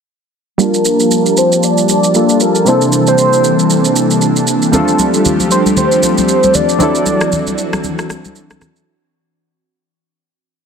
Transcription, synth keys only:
0.58 2.11 G3 medium
0.58 2.11 A#3 medium
0.58 2.12 D4 medium
0.58 2.12 F4 medium
0.62 2.13 A5 medium
2.14 2.64 G3 soft
2.14 2.65 A#3 soft
2.14 2.66 D4 soft
2.14 2.67 F4 soft
2.14 2.67 A4 medium
2.65 4.68 C3 medium
2.65 4.69 G3 medium
2.65 4.69 A#3 medium
2.65 4.70 D4 medium
2.65 4.70 E4 medium
2.69 4.71 A4 medium
4.72 6.75 G3 medium
4.72 6.76 C4 medium
4.72 6.77 D4 medium
4.72 6.77 F4 medium
4.76 6.78 A4 medium
6.78 8.82 F#3 medium
6.78 8.83 C4 medium
6.78 8.83 D4 medium
6.78 8.84 E4 medium
6.83 8.84 A4 medium

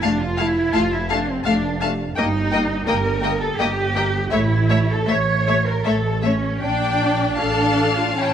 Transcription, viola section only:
0.03 0.11 A3 medium
0.38 0.46 A3 soft
0.74 0.82 A3 medium
1.10 1.18 A3 soft
1.46 1.54 A3 medium
1.83 1.91 A3 soft
2.17 2.25 A#3 medium
2.53 2.61 A#3 soft
2.87 2.95 A#3 medium
3.22 3.30 A#3 soft
3.58 3.66 A#3 soft
3.94 4.02 A#3 soft
4.31 4.39 A3 medium
4.70 4.78 A3 soft
5.07 5.15 A3 medium
5.48 5.56 A3 soft
5.85 5.93 A3 soft
6.23 6.31 A3 soft
6.62 7.34 D4 medium
7.39 8.15 D4 soft
8.17 8.34 C#4 soft

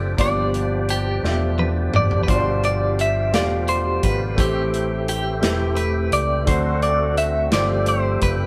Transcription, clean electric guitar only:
0.21 0.85 D5 medium
0.90 1.61 G4 medium
1.59 1.69 B4 medium
1.96 2.23 D5 medium
2.23 2.29 B4 medium
2.30 2.64 C5 medium
2.65 3.00 D5 medium
3.01 3.34 E5 medium
3.35 3.44 D5 medium
3.69 4.04 C5 medium
4.05 4.40 B4 medium
4.40 5.05 G4 medium
5.09 5.80 G4 medium
5.77 6.13 B4 medium
6.13 6.48 D5 medium
6.48 6.82 C5 medium
6.83 7.18 D5 medium
7.18 7.53 E5 medium
7.53 7.88 D5 medium
7.88 8.22 C5 medium
8.23 8.46 B4 medium

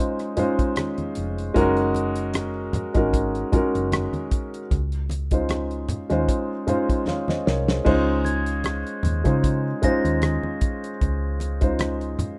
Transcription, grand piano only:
0.00 0.37 G#3 medium
0.00 0.37 C#4 medium
0.00 0.38 D#4 medium
0.00 0.38 F4 medium
0.00 0.39 C5 medium
0.37 1.17 G#3 medium
0.37 1.17 C#4 medium
0.37 1.17 D#4 medium
0.37 1.17 F4 medium
0.37 1.18 C5 medium
1.54 2.49 G#3 loud
1.54 2.49 C#4 medium
1.54 2.50 D#4 medium
1.54 2.50 F#4 loud
1.54 2.50 A#4 loud
2.94 3.34 G#3 medium
2.94 3.35 C#4 medium
2.94 3.35 D#4 medium
2.94 3.35 F#4 medium
2.94 3.36 A#4 medium
3.52 4.59 G#3 medium
3.52 4.59 C#4 medium
3.52 4.60 D#4 medium
3.52 4.60 F#4 medium
3.52 4.60 A#4 medium
5.32 5.84 G#3 medium
5.32 5.84 C#4 medium
5.32 5.84 D#4 medium
5.32 5.84 F4 medium
5.32 5.85 C5 medium
6.10 6.50 G#3 medium
6.10 6.50 C#4 medium
6.10 6.50 D#4 medium
6.10 6.50 F4 medium
6.10 6.51 C5 medium
6.67 7.47 G#3 medium
6.67 7.47 C#4 medium
6.67 7.47 D#4 medium
6.67 7.48 F4 medium
6.67 7.08 C5 medium
7.08 7.28 C#5 soft
7.08 7.28 F5 medium
7.28 7.46 C5 medium
7.28 7.46 D#5 medium
7.46 7.67 A#4 medium
7.46 7.67 C#5 medium
7.68 8.05 G#4 soft
7.68 7.85 C5 medium
7.85 8.79 G#3 medium
7.85 8.79 C#4 medium
7.85 8.80 D#4 medium
7.85 8.80 F4 medium
7.85 8.80 C5 loud
9.24 9.65 G#3 medium
9.24 9.65 C#4 medium
9.24 9.65 D#4 medium
9.24 9.65 F4 medium
9.24 9.66 C5 medium
9.82 10.89 G#3 medium
9.82 10.90 C#4 medium
9.82 10.90 D#4 medium
9.82 10.90 F4 medium
9.82 10.91 C5 medium
11.61 12.13 G#3 medium
11.61 12.13 C#4 medium
11.61 12.14 D#4 medium
11.61 12.14 F4 medium
11.61 12.14 C5 medium

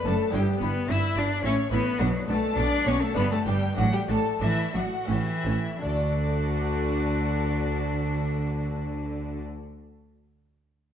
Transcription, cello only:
0.07 0.34 A3 medium
0.34 0.61 G3 loud
0.61 0.92 B3 loud
0.91 1.20 E4 loud
1.18 1.45 D4 loud
1.45 1.53 C#4 loud
1.74 2.02 B3 loud
2.01 2.29 F#3 loud
2.29 2.57 A3 loud
2.57 2.89 D4 loud
2.88 3.04 C#4 loud
3.02 3.16 A3 loud
3.17 3.31 B3 loud
3.32 3.38 A3 loud
3.47 3.77 G3 loud
3.78 3.92 F#3 loud
3.93 3.99 G3 medium
4.09 4.17 A3 medium
4.42 4.73 E3 loud
4.74 4.82 F#3 medium
5.09 5.81 E3 loud
5.81 9.40 D4 medium

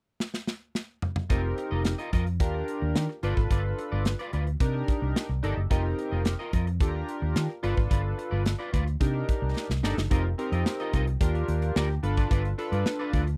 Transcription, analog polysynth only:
1.30 1.92 C4 medium
1.30 1.93 D#4 medium
1.30 1.93 G4 medium
1.30 1.93 A#4 medium
2.40 3.06 D4 medium
2.40 3.06 F4 medium
2.40 3.06 G4 medium
2.40 3.07 A#4 loud
3.23 4.11 D4 medium
3.23 4.11 F4 medium
3.23 4.11 A4 medium
3.23 4.11 B4 loud
4.60 5.27 D4 medium
4.60 5.27 D#4 medium
4.60 5.27 G4 medium
4.60 5.27 A#4 medium
5.43 5.57 D4 medium
5.43 5.57 D#4 medium
5.43 5.57 G4 medium
5.43 5.57 A4 medium
5.70 6.33 C4 medium
5.70 6.33 D#4 medium
5.70 6.33 G4 medium
5.70 6.33 A#4 medium
6.80 7.47 D4 medium
6.80 7.47 F4 medium
6.80 7.47 G4 medium
6.80 6.88 A4 medium
6.88 7.50 A#4 medium
7.63 8.51 D4 medium
7.63 8.51 F4 medium
7.63 8.51 A4 medium
7.63 8.52 B4 medium
9.00 9.67 D4 medium
9.00 9.67 D#4 medium
9.00 9.67 G4 medium
9.00 9.67 A#4 medium
9.83 9.97 D4 medium
9.83 9.97 D#4 medium
9.83 9.97 G4 medium
9.83 9.98 A4 medium
10.10 10.24 C4 medium
10.10 10.24 D#4 medium
10.10 10.25 G4 medium
10.10 10.25 A#4 medium
10.38 11.01 C4 medium
10.38 11.01 D#4 medium
10.38 11.01 G4 medium
10.38 11.01 A#4 medium
11.20 11.87 D4 medium
11.20 11.87 F4 medium
11.20 11.87 G4 medium
11.20 11.87 A#4 medium
12.03 12.47 D4 medium
12.03 12.47 F4 medium
12.03 12.48 A4 medium
12.03 12.48 B4 loud
12.58 13.21 D4 medium
12.58 13.21 F4 medium
12.58 13.21 A4 medium
12.58 13.21 B4 loud

